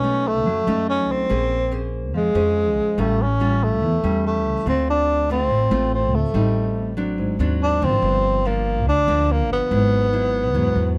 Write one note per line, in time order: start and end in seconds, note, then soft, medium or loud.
0.00 0.46 B1 medium
0.00 0.43 B2 medium
0.00 0.45 A3 soft
0.00 0.29 C#4 medium
0.00 0.45 C#4 soft
0.04 0.45 D#4 medium
0.28 0.89 A3 medium
0.46 0.65 F#2 loud
0.46 1.28 F#3 medium
0.67 1.09 F#2 medium
0.67 1.26 A3 medium
0.67 1.27 C#4 medium
0.67 1.27 D#4 medium
0.89 1.13 C#4 medium
1.09 1.18 B1 medium
1.09 1.88 C4 loud
1.29 2.14 A#1 medium
1.29 2.11 A#3 medium
1.29 1.56 C#4 medium
1.29 1.57 G#4 medium
1.29 1.57 C5 medium
1.71 2.13 C#4 soft
1.71 2.14 G#4 soft
1.71 2.14 C5 medium
2.14 2.33 F2 medium
2.14 2.96 F3 medium
2.14 3.02 G#3 medium
2.35 2.77 F2 medium
2.35 2.94 C#4 medium
2.35 2.94 G#4 medium
2.35 2.95 C5 medium
2.77 2.86 A#1 medium
2.98 3.82 A1 medium
2.98 3.80 A2 medium
2.98 3.25 G3 medium
2.98 3.23 A3 medium
2.98 3.25 C#4 medium
2.98 3.25 F4 medium
3.22 3.65 C#4 medium
3.40 3.82 G3 soft
3.40 3.82 C#4 soft
3.40 3.82 F4 medium
3.64 4.25 A3 medium
3.82 4.01 E2 medium
3.82 4.64 E3 soft
4.04 4.45 E2 medium
4.04 4.63 G3 medium
4.04 4.63 C#4 medium
4.26 4.64 A3 medium
4.45 4.55 C#2 medium
4.66 5.50 D2 medium
4.66 5.48 D3 medium
4.66 5.26 A3 medium
4.66 5.26 C4 medium
4.66 4.87 C4 medium
4.66 5.26 F4 medium
4.90 5.27 D4 medium
5.30 5.68 A3 medium
5.30 5.68 C4 medium
5.30 5.89 C4 medium
5.30 5.69 F4 medium
5.50 5.69 A1 medium
5.50 6.32 A2 medium
5.71 6.13 A1 medium
5.71 6.31 A3 medium
5.71 6.31 C4 medium
5.71 6.31 F4 medium
5.94 6.16 C4 medium
6.13 6.23 D2 medium
6.13 6.98 A3 medium
6.34 7.18 A1 medium
6.34 7.16 A2 medium
6.34 6.94 G3 soft
6.34 6.94 C4 medium
6.34 6.94 D#4 medium
6.97 7.36 F#3 medium
6.97 7.36 C4 medium
6.97 7.36 D4 medium
7.18 7.38 G#1 loud
7.18 8.00 G#2 medium
7.39 7.83 D#2 medium
7.39 7.78 F#3 medium
7.39 7.78 C4 medium
7.39 7.78 D4 medium
7.63 7.85 D4 medium
7.82 7.91 G#1 medium
7.82 8.44 F3 medium
7.82 8.45 A#3 medium
7.82 8.48 C4 medium
7.82 8.45 D4 medium
8.02 8.86 G1 medium
8.02 8.85 G2 medium
8.45 8.87 F3 soft
8.45 8.87 A#3 soft
8.45 8.87 A#3 medium
8.45 8.87 D4 soft
8.86 9.06 D2 medium
8.86 9.69 D3 medium
8.86 9.33 D4 medium
9.07 9.50 D2 medium
9.07 9.67 F3 medium
9.07 9.68 A#3 medium
9.07 9.68 D4 medium
9.31 9.51 A#3 medium
9.50 9.59 G1 medium
9.50 10.98 B3 loud
9.71 10.55 G#1 medium
9.71 10.53 G#2 medium
9.71 10.09 F#3 medium
9.71 10.10 E4 medium
10.13 10.51 F#3 soft
10.13 10.52 E4 medium
10.54 10.74 E2 medium
10.54 10.98 G#2 soft
10.54 10.96 F#3 soft
10.54 10.97 E4 medium
10.76 10.98 E2 medium